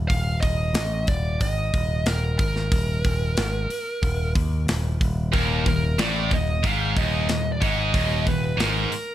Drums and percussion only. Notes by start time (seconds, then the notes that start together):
0.10 kick, open hi-hat
0.43 kick, open hi-hat
0.74 snare, open hi-hat
1.07 kick, open hi-hat
1.41 kick, open hi-hat
1.74 kick, open hi-hat
2.06 snare, open hi-hat
2.39 kick, open hi-hat
2.56 snare
2.72 kick, open hi-hat
3.05 kick, open hi-hat
3.37 snare, open hi-hat
3.70 open hi-hat
4.03 kick, open hi-hat
4.35 kick, open hi-hat
4.68 snare, open hi-hat
5.01 kick, open hi-hat
5.33 kick, open hi-hat
5.66 kick, open hi-hat
5.99 snare, open hi-hat
6.31 kick, open hi-hat
6.64 kick, open hi-hat
6.97 kick, open hi-hat
7.29 snare, open hi-hat
7.62 kick, open hi-hat
7.94 kick, open hi-hat
8.27 kick, open hi-hat
8.60 snare, open hi-hat
8.92 open hi-hat